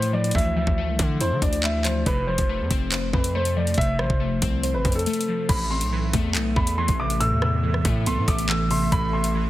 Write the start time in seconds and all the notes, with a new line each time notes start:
Already playing: A2 E3 F3 A3 D4 E4
0.02 closed hi-hat
0.13 F3 D5
0.24 closed hi-hat
0.31 D2 E3 E5, kick, closed hi-hat
0.38 closed hi-hat
0.56 F3 E5
0.67 D2, kick
0.78 A3
0.88 C2
0.99 D3 D4, kick, closed hi-hat
1.21 E2 E4 C5, closed hi-hat
1.31 D3
1.42 D2 D4 D5, kick, closed hi-hat
1.53 closed hi-hat
1.64 A3 E5, clap
1.85 F3 C5, clap, closed hi-hat
2.06 F1 C3 B4, kick, closed hi-hat
2.27 F3 C5
2.38 F1, kick, closed hi-hat
2.49 A3
2.60 F2
2.70 F1 C4, kick, closed hi-hat
2.92 C5, clap, closed hi-hat
3.13 F2 C4 B4, kick
3.24 closed hi-hat
3.35 A3 C5
3.45 closed hi-hat
3.56 F3 D5
3.67 closed hi-hat
3.74 F1 C3 E5, kick, closed hi-hat
3.81 closed hi-hat
3.99 A1 F3 C5, cross-stick
4.10 F1, kick
4.20 A3
4.42 C2 C4, kick, closed hi-hat
4.63 C5, closed hi-hat
4.74 G#1 B4
4.85 F2 C4, kick, closed hi-hat
4.92 A4, closed hi-hat
4.99 closed hi-hat
5.06 A3, closed hi-hat
5.13 closed hi-hat
5.21 closed hi-hat
5.28 F3
5.49 A1 A2 A3 A4 E5 B5, kick, closed hi-hat, crash
5.71 C4 C6
5.81 B1, closed hi-hat
5.92 E3
6.13 E2 A3, kick, closed hi-hat
6.35 B1 B3, clap, closed hi-hat
6.56 E2 A3 B5, kick
6.67 closed hi-hat
6.78 E3 C6
6.88 A1, kick, closed hi-hat
7.00 C3 D6
7.10 closed hi-hat
7.20 A2 E6, closed hi-hat
7.31 E2
7.42 C3 E6, cross-stick
7.63 E3
7.74 cross-stick
7.85 A2 A3, kick, closed hi-hat
8.06 B1 B3 C6, closed hi-hat
8.17 A2
8.28 A1 A3 D6, kick, closed hi-hat
8.38 closed hi-hat
8.49 E3 E6, clap
8.70 C3 C6, open hi-hat
8.92 A1 A2 B5, kick, closed hi-hat
9.13 C3 C6
9.24 closed hi-hat
9.35 E3